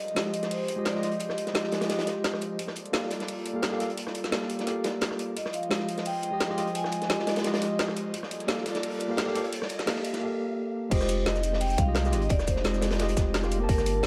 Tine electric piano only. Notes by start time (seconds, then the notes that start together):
0.15 G#3 F4 G4 D#5
0.76 G#3 F4 G4 D#5
0.93 G#3 F4 G4 D#5
1.01 G#3 F4 G4 D#5
1.53 G#3 F4 G4 D#5
1.86 G#3 F4 G4
1.92 D#5
2.92 A#3 G4 A4 F5
3.53 A#3 G4 A4 F5
3.70 A#3 G4 A4 F5
3.79 A#3 G4 A4 F5
4.31 A#3 G4 A4 F5
4.64 A#3 G4 A4
4.70 F5
5.69 G#3 F4 G4 D#5
6.30 G#3 F4 G4 D#5
6.48 G#3 F4 G4 D#5
6.56 G#3 F4 G4 D#5
7.08 G#3 F4 G4 D#5
7.41 G#3 F4 G4
7.47 D#5
8.47 A#3 G4 A4 F5
9.08 A#3 G4 A4 F5
9.25 A#3 G4 A4 F5
9.33 A#3 G4 A4 F5
9.86 A#3 G4 A4 F5
10.19 A#3 G4
10.23 A4 F5
10.90 G#3 F4 G4 D#5
11.25 G#3 F4 G4 D#5
11.86 G#3 F4 G4 D#5
12.03 G#3 F4 G4 D#5
12.12 G#3 F4 G4 D#5
12.64 G#3 F4 G4 D#5
12.97 G#3 F4
13.01 G4 D#5
13.42 G#3 F4 G4 F5
13.58 A#3 G4 A#4
13.64 A5
14.02 A#3 G4